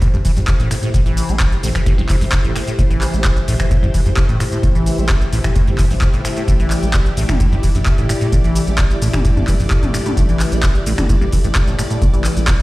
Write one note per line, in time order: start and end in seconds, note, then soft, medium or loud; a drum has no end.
0.00 0.08 A2 medium
0.00 12.62 A3 medium
0.00 12.62 E4 medium
0.00 12.62 G4 medium
0.00 6.46 C5 medium
0.00 kick loud
0.00 closed hi-hat medium
0.00 shaker soft
0.13 0.21 A1 medium
0.13 0.17 G2 loud
0.13 shaker soft
0.25 0.31 E3 medium
0.25 kick medium
0.25 open hi-hat medium
0.25 shaker medium
0.37 0.44 A1 medium
0.37 0.40 G2 loud
0.37 closed hi-hat medium
0.37 shaker soft
0.48 kick loud
0.48 clap loud
0.48 closed hi-hat medium
0.48 shaker soft
0.60 0.67 A1 medium
0.60 0.69 A2 medium
0.60 closed hi-hat soft
0.60 shaker soft
0.71 0.75 A2 loud
0.71 finger snap medium
0.71 open hi-hat loud
0.71 shaker medium
0.83 0.89 A2 medium
0.83 closed hi-hat medium
0.83 shaker soft
0.94 1.23 A1 loud
0.94 1.01 A2 medium
0.94 kick loud
0.94 closed hi-hat medium
0.94 shaker soft
1.06 1.31 E3 medium
1.06 closed hi-hat soft
1.06 shaker soft
1.17 open hi-hat loud
1.17 shaker medium
1.29 1.58 A1 medium
1.29 1.35 A3 medium
1.29 closed hi-hat medium
1.29 shaker soft
1.40 kick loud
1.40 clap loud
1.40 closed hi-hat medium
1.40 shaker soft
1.52 closed hi-hat soft
1.52 shaker soft
1.63 1.71 A1 loud
1.63 1.70 A2 loud
1.63 open hi-hat loud
1.63 shaker medium
1.75 1.81 E3 medium
1.75 finger snap medium
1.75 kick medium
1.75 closed hi-hat medium
1.75 shaker soft
1.86 1.93 A2 medium
1.86 kick loud
1.86 closed hi-hat medium
1.86 shaker soft
1.98 2.06 A1 medium
1.98 2.02 G2 loud
1.98 shaker soft
2.09 2.16 E3 medium
2.09 kick medium
2.09 clap medium
2.09 open hi-hat loud
2.09 shaker medium
2.21 2.29 A1 medium
2.21 2.25 G2 loud
2.21 open hi-hat medium
2.21 shaker soft
2.32 kick loud
2.32 clap loud
2.32 closed hi-hat medium
2.32 shaker soft
2.44 2.52 A1 medium
2.44 2.54 A2 medium
2.44 closed hi-hat soft
2.44 shaker soft
2.56 2.60 A2 loud
2.56 finger snap medium
2.56 open hi-hat loud
2.56 shaker medium
2.67 2.74 A2 medium
2.67 closed hi-hat medium
2.67 shaker soft
2.79 3.08 A1 loud
2.79 2.85 A2 medium
2.79 kick loud
2.79 closed hi-hat medium
2.79 shaker soft
2.90 3.15 E3 medium
2.90 closed hi-hat soft
2.90 shaker soft
3.01 clap medium
3.01 open hi-hat loud
3.01 shaker medium
3.14 3.42 A1 medium
3.14 3.20 A3 medium
3.14 closed hi-hat soft
3.14 shaker soft
3.24 kick loud
3.24 clap loud
3.24 closed hi-hat medium
3.24 shaker soft
3.37 closed hi-hat soft
3.37 shaker soft
3.48 3.56 A1 loud
3.48 3.54 A2 loud
3.48 open hi-hat loud
3.48 shaker medium
3.60 3.66 E3 medium
3.60 finger snap medium
3.60 kick medium
3.60 shaker soft
3.71 3.77 A2 medium
3.71 kick loud
3.71 closed hi-hat medium
3.71 shaker soft
3.83 3.90 A1 medium
3.83 3.86 G2 loud
3.83 shaker soft
3.94 4.01 E3 medium
3.94 kick medium
3.94 open hi-hat loud
3.94 shaker medium
4.06 4.14 A1 loud
4.06 4.10 G2 loud
4.06 closed hi-hat medium
4.06 shaker soft
4.17 kick loud
4.17 clap loud
4.17 closed hi-hat medium
4.17 shaker soft
4.29 4.37 A1 medium
4.29 4.38 A2 medium
4.29 closed hi-hat soft
4.29 shaker soft
4.40 4.44 A2 loud
4.40 finger snap medium
4.40 open hi-hat loud
4.40 shaker medium
4.52 4.58 A2 medium
4.52 closed hi-hat medium
4.52 shaker soft
4.63 4.92 A1 medium
4.63 4.70 A2 medium
4.63 kick loud
4.63 closed hi-hat medium
4.63 shaker soft
4.75 5.00 E3 medium
4.75 closed hi-hat soft
4.75 shaker soft
4.86 open hi-hat loud
4.86 shaker medium
4.98 5.27 A1 medium
4.98 5.04 A3 medium
4.98 closed hi-hat soft
4.98 shaker soft
5.09 kick loud
5.09 clap loud
5.09 closed hi-hat medium
5.09 shaker soft
5.21 closed hi-hat soft
5.21 shaker soft
5.33 5.41 A1 loud
5.33 5.39 A2 loud
5.33 open hi-hat loud
5.33 shaker medium
5.44 5.51 E3 medium
5.44 finger snap medium
5.44 kick medium
5.44 closed hi-hat soft
5.44 shaker soft
5.56 5.62 A2 medium
5.56 kick loud
5.56 closed hi-hat medium
5.56 shaker soft
5.67 5.83 G1 medium
5.67 5.71 G2 loud
5.67 closed hi-hat soft
5.67 shaker soft
5.78 5.85 E3 medium
5.78 kick medium
5.78 clap medium
5.78 open hi-hat loud
5.78 shaker medium
5.91 6.06 A1 loud
5.91 5.94 G2 loud
5.91 open hi-hat medium
5.91 shaker soft
6.01 kick loud
6.01 clap loud
6.01 closed hi-hat medium
6.01 shaker soft
6.14 6.21 G1 medium
6.14 6.23 A2 medium
6.14 closed hi-hat soft
6.14 shaker soft
6.25 6.29 A2 loud
6.25 finger snap medium
6.25 open hi-hat loud
6.25 shaker medium
6.37 6.43 A2 medium
6.37 closed hi-hat soft
6.37 shaker soft
6.48 6.77 A1 loud
6.48 6.54 A2 medium
6.48 12.62 D5 medium
6.48 kick loud
6.48 closed hi-hat medium
6.48 shaker soft
6.60 6.84 E3 medium
6.60 closed hi-hat soft
6.60 shaker soft
6.71 clap medium
6.71 open hi-hat loud
6.71 shaker medium
6.83 7.11 A1 medium
6.83 6.89 A3 medium
6.83 closed hi-hat medium
6.83 shaker soft
6.94 kick loud
6.94 clap loud
6.94 closed hi-hat medium
6.94 shaker soft
7.06 closed hi-hat soft
7.06 shaker soft
7.17 7.25 A1 loud
7.17 7.24 A2 loud
7.17 open hi-hat loud
7.17 shaker medium
7.29 7.35 E3 medium
7.29 finger snap medium
7.29 kick medium
7.29 closed hi-hat medium
7.29 mid tom medium
7.29 shaker soft
7.40 7.47 A2 medium
7.40 kick loud
7.40 closed hi-hat medium
7.40 shaker soft
7.52 7.60 A1 medium
7.52 7.56 G2 loud
7.52 shaker soft
7.63 7.70 E3 medium
7.63 kick medium
7.63 open hi-hat loud
7.63 shaker medium
7.75 7.83 A1 medium
7.75 7.79 G2 loud
7.75 closed hi-hat soft
7.75 shaker soft
7.86 kick loud
7.86 clap loud
7.86 closed hi-hat medium
7.86 shaker soft
7.98 8.06 A1 medium
7.98 8.08 A2 medium
7.98 closed hi-hat soft
7.98 shaker soft
8.09 8.13 A2 loud
8.09 finger snap medium
8.09 open hi-hat loud
8.09 shaker medium
8.21 8.27 A2 medium
8.21 closed hi-hat medium
8.21 shaker soft
8.32 8.61 A1 loud
8.32 8.39 A2 medium
8.32 kick loud
8.32 closed hi-hat medium
8.32 shaker soft
8.44 8.69 E3 medium
8.44 closed hi-hat soft
8.44 shaker soft
8.55 open hi-hat loud
8.55 shaker medium
8.67 8.96 A1 medium
8.67 8.74 A3 medium
8.67 closed hi-hat medium
8.67 shaker soft
8.78 kick loud
8.78 clap loud
8.78 closed hi-hat medium
8.78 shaker soft
8.90 closed hi-hat soft
8.90 shaker soft
9.02 9.10 A1 loud
9.02 9.08 A2 loud
9.02 open hi-hat loud
9.02 shaker medium
9.13 9.20 E3 medium
9.13 finger snap medium
9.13 kick medium
9.13 closed hi-hat medium
9.13 mid tom medium
9.13 shaker soft
9.25 9.31 A2 medium
9.25 kick loud
9.25 closed hi-hat medium
9.25 shaker soft
9.37 9.44 A1 medium
9.37 9.40 G2 loud
9.37 mid tom medium
9.37 shaker soft
9.48 9.54 E3 medium
9.48 kick medium
9.48 clap medium
9.48 open hi-hat loud
9.48 shaker medium
9.60 9.67 A1 medium
9.60 9.63 G2 loud
9.60 open hi-hat medium
9.60 shaker soft
9.71 kick loud
9.71 clap loud
9.71 closed hi-hat medium
9.71 shaker soft
9.83 9.90 A1 medium
9.83 9.92 A2 medium
9.83 closed hi-hat soft
9.83 mid tom medium
9.83 shaker soft
9.94 9.98 A2 loud
9.94 finger snap medium
9.94 open hi-hat loud
9.94 shaker medium
10.06 10.12 A2 medium
10.06 closed hi-hat medium
10.06 mid tom medium
10.06 shaker soft
10.17 10.46 A1 loud
10.17 10.24 A2 medium
10.17 kick loud
10.17 closed hi-hat medium
10.17 shaker soft
10.29 10.54 E3 medium
10.29 closed hi-hat soft
10.29 shaker soft
10.40 clap medium
10.40 open hi-hat loud
10.40 shaker medium
10.52 10.81 A1 loud
10.52 10.58 A3 medium
10.52 closed hi-hat medium
10.52 shaker soft
10.63 kick loud
10.63 clap loud
10.63 closed hi-hat medium
10.63 shaker soft
10.75 closed hi-hat soft
10.75 shaker soft
10.86 10.94 A1 loud
10.86 10.93 A2 loud
10.86 open hi-hat loud
10.86 shaker medium
10.98 11.04 E3 medium
10.98 finger snap medium
10.98 kick medium
10.98 closed hi-hat medium
10.98 mid tom medium
10.98 shaker soft
11.09 11.16 A2 medium
11.09 kick loud
11.09 closed hi-hat medium
11.09 shaker soft
11.21 11.29 A1 medium
11.21 11.25 G2 loud
11.21 shaker soft
11.32 11.39 E3 medium
11.32 kick medium
11.32 open hi-hat loud
11.32 shaker medium
11.44 11.52 A1 medium
11.44 11.48 G2 loud
11.44 closed hi-hat medium
11.44 shaker soft
11.55 kick loud
11.55 clap loud
11.55 closed hi-hat medium
11.55 shaker soft
11.67 11.75 A1 medium
11.67 11.77 A2 medium
11.67 closed hi-hat soft
11.67 shaker soft
11.79 11.83 A2 loud
11.79 finger snap medium
11.79 open hi-hat loud
11.79 shaker medium
11.90 11.97 A2 medium
11.90 closed hi-hat medium
11.90 shaker soft
12.02 12.31 A1 loud
12.02 12.08 A2 medium
12.02 kick loud
12.02 closed hi-hat medium
12.02 shaker soft
12.14 12.38 E3 medium
12.14 closed hi-hat soft
12.14 shaker soft
12.24 clap medium
12.24 open hi-hat loud
12.24 shaker medium
12.37 12.62 A1 loud
12.37 12.43 A3 medium
12.37 closed hi-hat medium
12.37 shaker soft
12.48 kick loud
12.48 clap loud
12.48 closed hi-hat medium
12.48 shaker soft